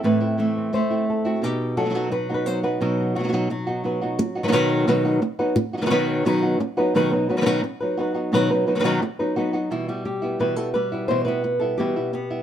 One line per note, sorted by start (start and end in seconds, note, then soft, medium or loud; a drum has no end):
0.03 0.20 A2 medium
0.03 1.41 A2 medium
0.03 0.20 E3 medium
0.03 0.21 A3 medium
0.03 0.20 C4 medium
0.03 0.19 E4 medium
0.03 0.74 B4 medium
0.20 0.37 A3 soft
0.20 0.37 C4 soft
0.20 0.37 E4 soft
0.20 0.91 E4 soft
0.38 0.72 E3 soft
0.38 0.72 A3 soft
0.38 0.74 A3 medium
0.38 0.72 C4 soft
0.38 0.72 E4 soft
0.58 1.41 C4 soft
0.73 1.41 A3 medium
0.73 1.08 C5 loud
0.73 muted nylon-string guitar stroke medium
0.90 1.25 A3 soft
0.90 1.24 C4 soft
0.90 1.24 E4 soft
0.90 1.26 E4 soft
1.10 1.41 A4 medium
1.25 1.42 A3 soft
1.25 1.42 C4 soft
1.25 1.42 E4 soft
1.25 1.44 F#4 medium
1.42 1.76 B2 medium
1.42 2.81 B2 medium
1.42 1.77 B3 medium
1.42 1.77 D#4 medium
1.42 1.78 G4 medium
1.77 2.11 F#3 medium
1.77 1.84 B3 soft
1.77 1.85 D#4 soft
1.77 1.85 F#4 soft
1.77 2.12 A4 medium
1.85 1.89 F#3 soft
1.85 1.89 B3 soft
1.85 1.89 D#4 soft
1.85 1.90 F#4 soft
1.90 1.94 F#3 medium
1.90 1.94 B3 medium
1.90 1.94 D#4 medium
1.90 1.94 F#4 medium
1.94 2.11 B2 medium
1.94 2.11 F#3 medium
1.94 2.11 B3 medium
1.94 2.11 D#4 medium
1.94 2.30 D#4 soft
1.94 2.12 F#4 medium
2.12 3.15 F#3 medium
2.12 2.33 B4 medium
2.12 muted nylon-string guitar stroke medium
2.29 2.46 B3 soft
2.29 2.46 D#4 soft
2.29 3.34 D#4 soft
2.29 2.46 F#4 soft
2.34 2.46 B4 medium
2.46 2.63 F#3 soft
2.46 2.63 B3 soft
2.46 2.63 D#4 soft
2.46 2.62 F#4 soft
2.46 2.63 C5 medium
2.63 2.80 B3 soft
2.63 2.80 D#4 soft
2.63 2.80 F#4 medium
2.63 3.84 B4 medium
2.81 3.15 B2 medium
2.81 4.17 B2 medium
2.81 3.15 F#3 medium
2.81 3.15 B3 medium
2.81 3.15 D#4 medium
2.81 3.14 F#4 medium
3.00 3.68 F#4 soft
3.15 3.50 F#3 medium
3.15 3.22 F#3 soft
3.15 3.19 B3 soft
3.15 3.19 D#4 soft
3.15 3.19 F#4 soft
3.19 3.23 B3 soft
3.19 3.23 D#4 soft
3.19 3.24 F#4 soft
3.24 3.27 F#3 soft
3.24 3.27 B3 soft
3.24 3.28 D#4 medium
3.24 3.28 F#4 medium
3.28 3.32 F#3 medium
3.28 3.32 B3 medium
3.28 3.32 D#4 medium
3.28 3.33 F#4 medium
3.33 3.49 B2 medium
3.33 3.49 F#3 medium
3.33 3.49 B3 medium
3.33 3.49 D#4 medium
3.33 4.18 D#4 soft
3.33 3.49 F#4 medium
3.50 4.42 F#3 medium
3.50 muted nylon-string guitar stroke medium
3.67 3.83 B3 soft
3.67 3.83 D#4 soft
3.67 3.84 F#4 soft
3.67 4.02 F#4 soft
3.84 4.01 F#3 soft
3.84 4.01 B3 soft
3.84 4.01 D#4 soft
3.84 4.00 F#4 soft
3.84 4.18 B4 soft
4.01 4.19 B3 soft
4.01 4.19 D#4 soft
4.01 4.18 F#4 soft
4.19 muted nylon-string guitar stroke medium
4.35 4.43 B3 soft
4.35 4.44 D#4 soft
4.35 4.44 F#4 soft
4.43 4.47 D#3 medium
4.43 4.47 F#3 soft
4.43 4.47 B3 medium
4.43 4.48 B3 soft
4.43 4.48 D#4 medium
4.43 4.48 D#4 soft
4.43 4.49 F#4 soft
4.43 4.48 B4 medium
4.48 4.51 D#3 medium
4.48 4.52 F#3 medium
4.48 4.52 B3 medium
4.48 4.53 B3 medium
4.48 4.52 D#4 medium
4.48 4.53 D#4 medium
4.48 4.53 F#4 medium
4.48 4.52 B4 medium
4.52 4.86 B2 medium
4.52 4.86 D#3 medium
4.52 4.87 F#3 medium
4.52 4.86 F#3 medium
4.52 4.87 B3 medium
4.52 4.87 D#4 medium
4.52 4.87 F#4 medium
4.52 4.87 B4 medium
4.87 5.04 B2 medium
4.87 5.21 B2 medium
4.87 5.21 D#3 medium
4.87 5.04 F#3 medium
4.87 5.21 F#3 medium
4.87 5.05 B3 medium
4.87 5.21 B3 medium
4.87 5.04 D#4 medium
4.87 5.21 D#4 medium
4.87 5.03 F#4 medium
4.87 5.21 B4 medium
5.05 5.21 B3 soft
5.05 5.21 D#4 soft
5.05 5.21 F#4 soft
5.22 muted nylon-string guitar stroke medium
5.39 5.57 F#3 soft
5.39 5.56 B3 soft
5.39 5.57 B3 soft
5.39 5.56 D#4 medium
5.39 5.56 D#4 soft
5.39 5.56 F#4 soft
5.39 5.56 B4 medium
5.57 muted nylon-string guitar stroke medium
5.73 5.77 B3 soft
5.73 5.77 D#4 soft
5.73 5.77 F#4 soft
5.77 5.81 F#3 soft
5.77 5.81 B3 soft
5.77 5.81 D#4 soft
5.77 5.82 F#4 soft
5.82 5.85 D#3 medium
5.82 5.85 F#3 soft
5.82 5.85 F#3 medium
5.82 5.85 B3 medium
5.82 5.86 D#4 medium
5.82 5.86 F#4 medium
5.82 5.86 B4 medium
5.86 5.89 D#3 medium
5.86 5.90 F#3 medium
5.86 5.90 B3 medium
5.86 5.90 D#4 medium
5.86 5.91 F#4 medium
5.86 5.90 B4 medium
5.90 6.24 B2 medium
5.90 6.24 D#3 medium
5.90 6.24 F#3 medium
5.90 6.25 F#3 medium
5.90 6.25 B3 medium
5.90 6.25 D#4 medium
5.90 6.25 F#4 medium
5.90 6.25 B4 medium
6.25 6.42 B2 medium
6.25 6.59 B2 medium
6.25 6.59 D#3 medium
6.25 6.42 F#3 medium
6.25 6.59 F#3 medium
6.25 6.42 B3 medium
6.25 6.59 B3 medium
6.25 6.42 D#4 medium
6.25 6.60 D#4 loud
6.25 6.41 F#4 medium
6.25 6.59 B4 medium
6.43 6.60 B3 soft
6.43 6.60 D#4 soft
6.43 6.59 F#4 soft
6.60 muted nylon-string guitar stroke medium
6.77 6.94 F#3 soft
6.77 6.94 B3 soft
6.77 6.95 B3 medium
6.77 6.94 D#4 soft
6.77 6.94 D#4 medium
6.77 6.94 F#4 soft
6.77 6.94 B4 medium
6.94 7.28 B2 medium
6.94 7.11 B2 medium
6.94 7.12 D#3 medium
6.94 7.28 F#3 medium
6.94 7.12 F#3 medium
6.94 7.28 B3 medium
6.94 7.12 B3 medium
6.94 7.29 D#4 medium
6.94 7.12 D#4 medium
6.94 7.29 F#4 medium
6.94 7.11 B4 loud
7.12 7.29 F#3 medium
7.12 7.29 B3 medium
7.12 7.29 D#4 medium
7.12 7.28 B4 medium
7.29 7.46 F#3 soft
7.29 7.36 F#3 soft
7.29 7.46 B3 soft
7.29 7.36 B3 soft
7.29 7.37 D#4 medium
7.29 7.46 D#4 soft
7.29 7.45 F#4 medium
7.29 7.37 B4 medium
7.37 7.40 D#3 medium
7.37 7.41 F#3 medium
7.37 7.41 B3 medium
7.37 7.41 D#4 medium
7.37 7.42 B4 medium
7.41 7.45 D#3 medium
7.41 7.45 F#3 medium
7.41 7.46 B3 medium
7.41 7.46 D#4 medium
7.41 7.46 B4 medium
7.46 7.63 B2 medium
7.46 7.62 D#3 medium
7.46 7.62 F#3 loud
7.46 7.63 B3 loud
7.46 7.62 B3 soft
7.46 7.63 D#4 medium
7.46 7.63 D#4 soft
7.46 7.63 F#4 soft
7.46 7.63 B4 loud
7.63 muted nylon-string guitar stroke medium
7.81 7.97 F#3 medium
7.81 7.98 B3 medium
7.81 7.98 D#4 medium
7.81 7.97 B4 medium
7.97 8.32 F#3 medium
7.97 8.15 B3 soft
7.97 8.33 B3 medium
7.97 8.14 D#4 soft
7.97 8.33 D#4 medium
7.97 8.13 F#4 soft
7.97 8.33 B4 medium
8.14 8.31 B3 soft
8.14 8.32 D#4 soft
8.14 8.31 F#4 soft
8.32 8.66 B2 medium
8.32 8.49 B2 medium
8.32 8.50 D#3 medium
8.32 8.65 F#3 medium
8.32 8.50 F#3 medium
8.32 8.66 B3 medium
8.32 8.50 B3 medium
8.32 8.66 D#4 medium
8.32 8.50 D#4 medium
8.32 8.67 F#4 medium
8.32 8.49 B4 medium
8.51 8.68 F#3 soft
8.51 8.67 B3 soft
8.51 8.67 D#4 medium
8.51 8.66 B4 medium
8.66 8.83 F#3 soft
8.66 8.74 F#3 soft
8.66 8.84 B3 soft
8.66 8.75 B3 medium
8.66 8.84 D#4 soft
8.66 8.75 D#4 medium
8.66 8.83 F#4 soft
8.66 8.75 B4 medium
8.75 8.78 D#3 medium
8.75 8.79 F#3 medium
8.75 8.79 B3 medium
8.75 8.80 D#4 medium
8.75 8.79 B4 medium
8.79 8.83 D#3 medium
8.79 8.84 F#3 medium
8.79 8.84 B3 medium
8.79 8.84 D#4 medium
8.79 8.84 B4 medium
8.84 9.01 B2 medium
8.84 9.01 D#3 medium
8.84 9.01 F#3 medium
8.84 9.01 B3 medium
8.84 9.01 B3 soft
8.84 9.01 D#4 soft
8.84 9.02 D#4 medium
8.84 9.01 F#4 soft
8.84 9.02 B4 medium
9.02 muted nylon-string guitar stroke medium
9.19 9.36 F#3 soft
9.19 9.36 B3 medium
9.19 9.36 D#4 medium
9.19 9.36 B4 medium
9.36 9.70 F#3 medium
9.36 9.70 B3 medium
9.36 9.53 B3 soft
9.36 9.53 D#4 soft
9.36 9.71 D#4 medium
9.36 9.52 F#4 soft
9.36 9.71 B4 medium
9.53 9.71 B3 soft
9.53 9.70 D#4 soft
9.53 9.70 F#4 soft
9.70 9.87 B2 medium
9.70 10.40 B2 medium
9.70 9.88 E3 medium
9.70 9.88 G3 medium
9.70 9.88 B3 medium
9.70 9.87 E4 medium
9.88 10.74 G3 medium
9.88 10.04 G3 soft
9.88 10.04 B3 soft
9.88 10.04 E4 soft
10.05 10.75 G4 medium
10.05 muted nylon-string guitar stroke soft
10.22 10.39 G3 soft
10.22 10.39 B3 soft
10.22 11.28 B3 soft
10.22 10.39 E4 soft
10.39 10.56 B2 medium
10.39 11.10 B2 medium
10.39 10.57 E3 medium
10.39 10.57 G3 medium
10.39 10.57 B3 medium
10.39 10.56 E4 medium
10.39 10.56 B4 medium
10.56 10.74 G3 soft
10.56 10.74 B3 soft
10.56 10.74 E4 soft
10.56 10.73 A4 medium
10.74 11.08 G3 medium
10.74 11.08 B4 medium
10.74 muted nylon-string guitar stroke soft
10.92 11.09 G3 soft
10.92 11.09 B3 soft
10.92 11.09 E4 soft
10.92 11.59 E4 soft
11.08 11.26 B2 medium
11.08 11.80 B2 medium
11.08 11.26 E3 medium
11.08 11.26 G3 medium
11.08 11.26 B3 medium
11.08 11.25 E4 medium
11.08 11.24 C5 loud
11.25 11.43 G3 soft
11.25 11.43 B3 soft
11.25 12.14 B3 medium
11.25 11.43 E4 soft
11.25 11.95 B4 medium
11.43 muted nylon-string guitar stroke soft
11.59 11.78 G3 soft
11.59 11.79 B3 soft
11.59 11.78 E4 soft
11.59 11.77 A4 medium
11.78 11.96 B2 medium
11.78 12.43 B2 medium
11.78 11.96 E3 medium
11.78 11.96 G3 medium
11.78 11.96 B3 medium
11.78 11.95 E4 medium
11.78 12.43 G4 medium
11.96 12.12 G3 soft
11.96 12.12 B3 soft
11.96 12.13 E4 soft
12.13 12.43 B3 medium
12.13 muted nylon-string guitar stroke medium
12.30 12.43 G3 soft
12.30 12.43 B3 soft
12.30 12.43 E4 soft